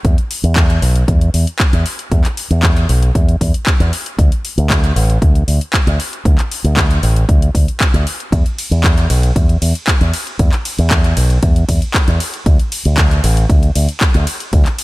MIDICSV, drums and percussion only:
0, 0, Header, 1, 2, 480
1, 0, Start_track
1, 0, Tempo, 517241
1, 45, Time_signature, 4, 2, 24, 8
1, 13769, End_track
2, 0, Start_track
2, 0, Title_t, "Drums"
2, 43, Note_on_c, 9, 36, 118
2, 43, Note_on_c, 9, 42, 65
2, 136, Note_off_c, 9, 36, 0
2, 136, Note_off_c, 9, 42, 0
2, 167, Note_on_c, 9, 42, 37
2, 260, Note_off_c, 9, 42, 0
2, 284, Note_on_c, 9, 46, 107
2, 377, Note_off_c, 9, 46, 0
2, 408, Note_on_c, 9, 42, 37
2, 501, Note_off_c, 9, 42, 0
2, 520, Note_on_c, 9, 39, 121
2, 522, Note_on_c, 9, 36, 121
2, 524, Note_on_c, 9, 42, 64
2, 613, Note_off_c, 9, 39, 0
2, 615, Note_off_c, 9, 36, 0
2, 617, Note_off_c, 9, 42, 0
2, 648, Note_on_c, 9, 42, 39
2, 741, Note_off_c, 9, 42, 0
2, 765, Note_on_c, 9, 46, 92
2, 858, Note_off_c, 9, 46, 0
2, 887, Note_on_c, 9, 42, 39
2, 980, Note_off_c, 9, 42, 0
2, 1003, Note_on_c, 9, 36, 113
2, 1004, Note_on_c, 9, 42, 68
2, 1095, Note_off_c, 9, 36, 0
2, 1096, Note_off_c, 9, 42, 0
2, 1127, Note_on_c, 9, 42, 35
2, 1219, Note_off_c, 9, 42, 0
2, 1243, Note_on_c, 9, 46, 105
2, 1336, Note_off_c, 9, 46, 0
2, 1367, Note_on_c, 9, 42, 39
2, 1460, Note_off_c, 9, 42, 0
2, 1479, Note_on_c, 9, 39, 107
2, 1483, Note_on_c, 9, 36, 116
2, 1483, Note_on_c, 9, 42, 60
2, 1572, Note_off_c, 9, 39, 0
2, 1576, Note_off_c, 9, 36, 0
2, 1576, Note_off_c, 9, 42, 0
2, 1607, Note_on_c, 9, 42, 39
2, 1700, Note_off_c, 9, 42, 0
2, 1723, Note_on_c, 9, 46, 92
2, 1816, Note_off_c, 9, 46, 0
2, 1847, Note_on_c, 9, 42, 38
2, 1940, Note_off_c, 9, 42, 0
2, 1963, Note_on_c, 9, 36, 115
2, 1964, Note_on_c, 9, 42, 67
2, 2056, Note_off_c, 9, 36, 0
2, 2056, Note_off_c, 9, 42, 0
2, 2084, Note_on_c, 9, 39, 36
2, 2088, Note_on_c, 9, 42, 40
2, 2176, Note_off_c, 9, 39, 0
2, 2180, Note_off_c, 9, 42, 0
2, 2203, Note_on_c, 9, 46, 107
2, 2295, Note_off_c, 9, 46, 0
2, 2327, Note_on_c, 9, 42, 40
2, 2419, Note_off_c, 9, 42, 0
2, 2439, Note_on_c, 9, 39, 113
2, 2443, Note_on_c, 9, 42, 66
2, 2444, Note_on_c, 9, 36, 116
2, 2532, Note_off_c, 9, 39, 0
2, 2536, Note_off_c, 9, 42, 0
2, 2537, Note_off_c, 9, 36, 0
2, 2566, Note_on_c, 9, 42, 39
2, 2659, Note_off_c, 9, 42, 0
2, 2684, Note_on_c, 9, 46, 88
2, 2777, Note_off_c, 9, 46, 0
2, 2808, Note_on_c, 9, 42, 40
2, 2900, Note_off_c, 9, 42, 0
2, 2925, Note_on_c, 9, 36, 113
2, 2926, Note_on_c, 9, 42, 67
2, 3018, Note_off_c, 9, 36, 0
2, 3019, Note_off_c, 9, 42, 0
2, 3049, Note_on_c, 9, 42, 37
2, 3142, Note_off_c, 9, 42, 0
2, 3165, Note_on_c, 9, 36, 64
2, 3166, Note_on_c, 9, 46, 104
2, 3257, Note_off_c, 9, 36, 0
2, 3259, Note_off_c, 9, 46, 0
2, 3288, Note_on_c, 9, 42, 42
2, 3381, Note_off_c, 9, 42, 0
2, 3401, Note_on_c, 9, 39, 107
2, 3404, Note_on_c, 9, 36, 118
2, 3405, Note_on_c, 9, 42, 63
2, 3494, Note_off_c, 9, 39, 0
2, 3497, Note_off_c, 9, 36, 0
2, 3498, Note_off_c, 9, 42, 0
2, 3529, Note_on_c, 9, 42, 41
2, 3622, Note_off_c, 9, 42, 0
2, 3647, Note_on_c, 9, 46, 92
2, 3739, Note_off_c, 9, 46, 0
2, 3769, Note_on_c, 9, 42, 40
2, 3862, Note_off_c, 9, 42, 0
2, 3884, Note_on_c, 9, 36, 111
2, 3886, Note_on_c, 9, 42, 72
2, 3977, Note_off_c, 9, 36, 0
2, 3979, Note_off_c, 9, 42, 0
2, 4009, Note_on_c, 9, 42, 42
2, 4102, Note_off_c, 9, 42, 0
2, 4126, Note_on_c, 9, 46, 103
2, 4219, Note_off_c, 9, 46, 0
2, 4249, Note_on_c, 9, 42, 39
2, 4342, Note_off_c, 9, 42, 0
2, 4363, Note_on_c, 9, 39, 122
2, 4364, Note_on_c, 9, 36, 112
2, 4367, Note_on_c, 9, 42, 67
2, 4455, Note_off_c, 9, 39, 0
2, 4457, Note_off_c, 9, 36, 0
2, 4460, Note_off_c, 9, 42, 0
2, 4489, Note_on_c, 9, 42, 41
2, 4582, Note_off_c, 9, 42, 0
2, 4606, Note_on_c, 9, 46, 89
2, 4699, Note_off_c, 9, 46, 0
2, 4730, Note_on_c, 9, 42, 41
2, 4822, Note_off_c, 9, 42, 0
2, 4844, Note_on_c, 9, 36, 112
2, 4845, Note_on_c, 9, 42, 71
2, 4936, Note_off_c, 9, 36, 0
2, 4938, Note_off_c, 9, 42, 0
2, 4968, Note_on_c, 9, 42, 38
2, 5061, Note_off_c, 9, 42, 0
2, 5085, Note_on_c, 9, 46, 102
2, 5178, Note_off_c, 9, 46, 0
2, 5209, Note_on_c, 9, 42, 43
2, 5301, Note_off_c, 9, 42, 0
2, 5323, Note_on_c, 9, 39, 118
2, 5324, Note_on_c, 9, 36, 109
2, 5327, Note_on_c, 9, 42, 65
2, 5415, Note_off_c, 9, 39, 0
2, 5417, Note_off_c, 9, 36, 0
2, 5419, Note_off_c, 9, 42, 0
2, 5449, Note_on_c, 9, 42, 42
2, 5542, Note_off_c, 9, 42, 0
2, 5566, Note_on_c, 9, 46, 88
2, 5658, Note_off_c, 9, 46, 0
2, 5689, Note_on_c, 9, 42, 39
2, 5782, Note_off_c, 9, 42, 0
2, 5803, Note_on_c, 9, 36, 119
2, 5806, Note_on_c, 9, 42, 74
2, 5896, Note_off_c, 9, 36, 0
2, 5899, Note_off_c, 9, 42, 0
2, 5925, Note_on_c, 9, 39, 38
2, 5929, Note_on_c, 9, 42, 41
2, 6018, Note_off_c, 9, 39, 0
2, 6022, Note_off_c, 9, 42, 0
2, 6046, Note_on_c, 9, 46, 106
2, 6139, Note_off_c, 9, 46, 0
2, 6168, Note_on_c, 9, 42, 41
2, 6261, Note_off_c, 9, 42, 0
2, 6281, Note_on_c, 9, 39, 125
2, 6283, Note_on_c, 9, 36, 120
2, 6285, Note_on_c, 9, 42, 69
2, 6374, Note_off_c, 9, 39, 0
2, 6376, Note_off_c, 9, 36, 0
2, 6378, Note_off_c, 9, 42, 0
2, 6408, Note_on_c, 9, 42, 42
2, 6501, Note_off_c, 9, 42, 0
2, 6525, Note_on_c, 9, 46, 89
2, 6618, Note_off_c, 9, 46, 0
2, 6648, Note_on_c, 9, 42, 42
2, 6741, Note_off_c, 9, 42, 0
2, 6763, Note_on_c, 9, 36, 117
2, 6765, Note_on_c, 9, 42, 75
2, 6856, Note_off_c, 9, 36, 0
2, 6858, Note_off_c, 9, 42, 0
2, 6889, Note_on_c, 9, 42, 40
2, 6982, Note_off_c, 9, 42, 0
2, 7003, Note_on_c, 9, 36, 64
2, 7006, Note_on_c, 9, 46, 106
2, 7096, Note_off_c, 9, 36, 0
2, 7099, Note_off_c, 9, 46, 0
2, 7130, Note_on_c, 9, 42, 42
2, 7223, Note_off_c, 9, 42, 0
2, 7244, Note_on_c, 9, 36, 110
2, 7244, Note_on_c, 9, 39, 114
2, 7248, Note_on_c, 9, 42, 66
2, 7337, Note_off_c, 9, 36, 0
2, 7337, Note_off_c, 9, 39, 0
2, 7341, Note_off_c, 9, 42, 0
2, 7371, Note_on_c, 9, 42, 44
2, 7463, Note_off_c, 9, 42, 0
2, 7487, Note_on_c, 9, 46, 88
2, 7580, Note_off_c, 9, 46, 0
2, 7612, Note_on_c, 9, 42, 41
2, 7705, Note_off_c, 9, 42, 0
2, 7724, Note_on_c, 9, 36, 113
2, 7728, Note_on_c, 9, 42, 70
2, 7728, Note_on_c, 9, 51, 60
2, 7817, Note_off_c, 9, 36, 0
2, 7821, Note_off_c, 9, 42, 0
2, 7821, Note_off_c, 9, 51, 0
2, 7850, Note_on_c, 9, 42, 43
2, 7942, Note_off_c, 9, 42, 0
2, 7967, Note_on_c, 9, 46, 106
2, 7967, Note_on_c, 9, 51, 82
2, 8060, Note_off_c, 9, 46, 0
2, 8060, Note_off_c, 9, 51, 0
2, 8090, Note_on_c, 9, 42, 43
2, 8183, Note_off_c, 9, 42, 0
2, 8203, Note_on_c, 9, 39, 127
2, 8205, Note_on_c, 9, 36, 127
2, 8207, Note_on_c, 9, 42, 69
2, 8207, Note_on_c, 9, 51, 56
2, 8296, Note_off_c, 9, 39, 0
2, 8298, Note_off_c, 9, 36, 0
2, 8300, Note_off_c, 9, 42, 0
2, 8300, Note_off_c, 9, 51, 0
2, 8330, Note_on_c, 9, 42, 43
2, 8423, Note_off_c, 9, 42, 0
2, 8445, Note_on_c, 9, 46, 91
2, 8445, Note_on_c, 9, 51, 80
2, 8538, Note_off_c, 9, 46, 0
2, 8538, Note_off_c, 9, 51, 0
2, 8568, Note_on_c, 9, 42, 42
2, 8661, Note_off_c, 9, 42, 0
2, 8685, Note_on_c, 9, 36, 119
2, 8687, Note_on_c, 9, 42, 74
2, 8687, Note_on_c, 9, 51, 58
2, 8778, Note_off_c, 9, 36, 0
2, 8779, Note_off_c, 9, 42, 0
2, 8779, Note_off_c, 9, 51, 0
2, 8810, Note_on_c, 9, 42, 39
2, 8903, Note_off_c, 9, 42, 0
2, 8927, Note_on_c, 9, 46, 110
2, 8927, Note_on_c, 9, 51, 76
2, 9020, Note_off_c, 9, 46, 0
2, 9020, Note_off_c, 9, 51, 0
2, 9051, Note_on_c, 9, 42, 43
2, 9144, Note_off_c, 9, 42, 0
2, 9164, Note_on_c, 9, 39, 124
2, 9165, Note_on_c, 9, 36, 119
2, 9168, Note_on_c, 9, 42, 67
2, 9168, Note_on_c, 9, 51, 54
2, 9257, Note_off_c, 9, 39, 0
2, 9258, Note_off_c, 9, 36, 0
2, 9261, Note_off_c, 9, 42, 0
2, 9261, Note_off_c, 9, 51, 0
2, 9289, Note_on_c, 9, 42, 43
2, 9382, Note_off_c, 9, 42, 0
2, 9405, Note_on_c, 9, 46, 92
2, 9405, Note_on_c, 9, 51, 78
2, 9498, Note_off_c, 9, 46, 0
2, 9498, Note_off_c, 9, 51, 0
2, 9530, Note_on_c, 9, 42, 39
2, 9623, Note_off_c, 9, 42, 0
2, 9645, Note_on_c, 9, 36, 125
2, 9645, Note_on_c, 9, 42, 71
2, 9645, Note_on_c, 9, 51, 54
2, 9738, Note_off_c, 9, 36, 0
2, 9738, Note_off_c, 9, 42, 0
2, 9738, Note_off_c, 9, 51, 0
2, 9765, Note_on_c, 9, 39, 39
2, 9769, Note_on_c, 9, 42, 41
2, 9858, Note_off_c, 9, 39, 0
2, 9862, Note_off_c, 9, 42, 0
2, 9886, Note_on_c, 9, 46, 109
2, 9886, Note_on_c, 9, 51, 77
2, 9978, Note_off_c, 9, 46, 0
2, 9978, Note_off_c, 9, 51, 0
2, 10008, Note_on_c, 9, 42, 41
2, 10101, Note_off_c, 9, 42, 0
2, 10120, Note_on_c, 9, 39, 127
2, 10124, Note_on_c, 9, 42, 70
2, 10124, Note_on_c, 9, 51, 54
2, 10125, Note_on_c, 9, 36, 122
2, 10213, Note_off_c, 9, 39, 0
2, 10217, Note_off_c, 9, 42, 0
2, 10217, Note_off_c, 9, 51, 0
2, 10218, Note_off_c, 9, 36, 0
2, 10248, Note_on_c, 9, 42, 41
2, 10341, Note_off_c, 9, 42, 0
2, 10364, Note_on_c, 9, 46, 99
2, 10364, Note_on_c, 9, 51, 76
2, 10457, Note_off_c, 9, 46, 0
2, 10457, Note_off_c, 9, 51, 0
2, 10487, Note_on_c, 9, 42, 42
2, 10579, Note_off_c, 9, 42, 0
2, 10603, Note_on_c, 9, 42, 71
2, 10603, Note_on_c, 9, 51, 58
2, 10604, Note_on_c, 9, 36, 125
2, 10696, Note_off_c, 9, 42, 0
2, 10696, Note_off_c, 9, 51, 0
2, 10697, Note_off_c, 9, 36, 0
2, 10728, Note_on_c, 9, 42, 39
2, 10821, Note_off_c, 9, 42, 0
2, 10844, Note_on_c, 9, 36, 66
2, 10845, Note_on_c, 9, 46, 106
2, 10845, Note_on_c, 9, 51, 74
2, 10937, Note_off_c, 9, 36, 0
2, 10937, Note_off_c, 9, 46, 0
2, 10937, Note_off_c, 9, 51, 0
2, 10968, Note_on_c, 9, 42, 42
2, 11061, Note_off_c, 9, 42, 0
2, 11082, Note_on_c, 9, 39, 122
2, 11084, Note_on_c, 9, 36, 115
2, 11086, Note_on_c, 9, 42, 62
2, 11086, Note_on_c, 9, 51, 53
2, 11174, Note_off_c, 9, 39, 0
2, 11177, Note_off_c, 9, 36, 0
2, 11178, Note_off_c, 9, 42, 0
2, 11178, Note_off_c, 9, 51, 0
2, 11207, Note_on_c, 9, 42, 43
2, 11300, Note_off_c, 9, 42, 0
2, 11325, Note_on_c, 9, 46, 98
2, 11325, Note_on_c, 9, 51, 72
2, 11418, Note_off_c, 9, 46, 0
2, 11418, Note_off_c, 9, 51, 0
2, 11448, Note_on_c, 9, 42, 39
2, 11541, Note_off_c, 9, 42, 0
2, 11564, Note_on_c, 9, 36, 126
2, 11565, Note_on_c, 9, 42, 68
2, 11565, Note_on_c, 9, 51, 53
2, 11657, Note_off_c, 9, 36, 0
2, 11657, Note_off_c, 9, 42, 0
2, 11657, Note_off_c, 9, 51, 0
2, 11688, Note_on_c, 9, 42, 39
2, 11781, Note_off_c, 9, 42, 0
2, 11804, Note_on_c, 9, 46, 113
2, 11804, Note_on_c, 9, 51, 76
2, 11897, Note_off_c, 9, 46, 0
2, 11897, Note_off_c, 9, 51, 0
2, 11927, Note_on_c, 9, 42, 39
2, 12020, Note_off_c, 9, 42, 0
2, 12041, Note_on_c, 9, 39, 127
2, 12044, Note_on_c, 9, 36, 127
2, 12045, Note_on_c, 9, 42, 68
2, 12045, Note_on_c, 9, 51, 54
2, 12134, Note_off_c, 9, 39, 0
2, 12136, Note_off_c, 9, 36, 0
2, 12138, Note_off_c, 9, 42, 0
2, 12138, Note_off_c, 9, 51, 0
2, 12169, Note_on_c, 9, 42, 39
2, 12261, Note_off_c, 9, 42, 0
2, 12286, Note_on_c, 9, 46, 99
2, 12286, Note_on_c, 9, 51, 79
2, 12378, Note_off_c, 9, 46, 0
2, 12378, Note_off_c, 9, 51, 0
2, 12408, Note_on_c, 9, 42, 41
2, 12500, Note_off_c, 9, 42, 0
2, 12524, Note_on_c, 9, 36, 119
2, 12526, Note_on_c, 9, 42, 67
2, 12526, Note_on_c, 9, 51, 59
2, 12617, Note_off_c, 9, 36, 0
2, 12618, Note_off_c, 9, 42, 0
2, 12618, Note_off_c, 9, 51, 0
2, 12646, Note_on_c, 9, 42, 39
2, 12739, Note_off_c, 9, 42, 0
2, 12764, Note_on_c, 9, 46, 115
2, 12764, Note_on_c, 9, 51, 75
2, 12857, Note_off_c, 9, 46, 0
2, 12857, Note_off_c, 9, 51, 0
2, 12886, Note_on_c, 9, 42, 40
2, 12979, Note_off_c, 9, 42, 0
2, 12999, Note_on_c, 9, 39, 117
2, 13003, Note_on_c, 9, 42, 64
2, 13003, Note_on_c, 9, 51, 52
2, 13004, Note_on_c, 9, 36, 126
2, 13091, Note_off_c, 9, 39, 0
2, 13095, Note_off_c, 9, 42, 0
2, 13095, Note_off_c, 9, 51, 0
2, 13097, Note_off_c, 9, 36, 0
2, 13125, Note_on_c, 9, 42, 39
2, 13218, Note_off_c, 9, 42, 0
2, 13243, Note_on_c, 9, 46, 95
2, 13243, Note_on_c, 9, 51, 76
2, 13336, Note_off_c, 9, 46, 0
2, 13336, Note_off_c, 9, 51, 0
2, 13367, Note_on_c, 9, 42, 40
2, 13460, Note_off_c, 9, 42, 0
2, 13483, Note_on_c, 9, 36, 120
2, 13483, Note_on_c, 9, 42, 65
2, 13483, Note_on_c, 9, 51, 58
2, 13576, Note_off_c, 9, 36, 0
2, 13576, Note_off_c, 9, 42, 0
2, 13576, Note_off_c, 9, 51, 0
2, 13601, Note_on_c, 9, 39, 37
2, 13605, Note_on_c, 9, 42, 39
2, 13694, Note_off_c, 9, 39, 0
2, 13698, Note_off_c, 9, 42, 0
2, 13721, Note_on_c, 9, 46, 117
2, 13721, Note_on_c, 9, 51, 78
2, 13769, Note_off_c, 9, 46, 0
2, 13769, Note_off_c, 9, 51, 0
2, 13769, End_track
0, 0, End_of_file